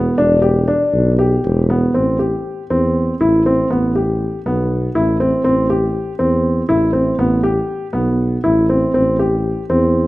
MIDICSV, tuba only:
0, 0, Header, 1, 2, 480
1, 0, Start_track
1, 0, Key_signature, 0, "minor"
1, 0, Tempo, 506757
1, 163, Time_signature, 7, 3, 24, 8
1, 2804, Tempo, 499168
1, 9643, End_track
2, 0, Start_track
2, 0, Title_t, "Tuba"
2, 0, Program_c, 0, 58
2, 0, Note_on_c, 0, 28, 80
2, 103, Note_off_c, 0, 28, 0
2, 165, Note_on_c, 0, 28, 83
2, 795, Note_off_c, 0, 28, 0
2, 878, Note_on_c, 0, 35, 86
2, 1303, Note_off_c, 0, 35, 0
2, 1368, Note_on_c, 0, 28, 82
2, 1790, Note_off_c, 0, 28, 0
2, 1847, Note_on_c, 0, 33, 69
2, 2254, Note_off_c, 0, 33, 0
2, 2563, Note_on_c, 0, 40, 72
2, 2984, Note_off_c, 0, 40, 0
2, 3042, Note_on_c, 0, 33, 83
2, 3464, Note_off_c, 0, 33, 0
2, 3518, Note_on_c, 0, 33, 73
2, 4153, Note_off_c, 0, 33, 0
2, 4246, Note_on_c, 0, 35, 72
2, 4665, Note_off_c, 0, 35, 0
2, 4716, Note_on_c, 0, 33, 81
2, 5137, Note_off_c, 0, 33, 0
2, 5192, Note_on_c, 0, 33, 78
2, 5823, Note_off_c, 0, 33, 0
2, 5916, Note_on_c, 0, 40, 77
2, 6333, Note_off_c, 0, 40, 0
2, 6388, Note_on_c, 0, 33, 84
2, 6808, Note_off_c, 0, 33, 0
2, 6868, Note_on_c, 0, 33, 77
2, 7274, Note_off_c, 0, 33, 0
2, 7584, Note_on_c, 0, 35, 73
2, 8011, Note_off_c, 0, 35, 0
2, 8082, Note_on_c, 0, 33, 77
2, 8506, Note_off_c, 0, 33, 0
2, 8563, Note_on_c, 0, 33, 75
2, 9199, Note_off_c, 0, 33, 0
2, 9287, Note_on_c, 0, 40, 75
2, 9643, Note_off_c, 0, 40, 0
2, 9643, End_track
0, 0, End_of_file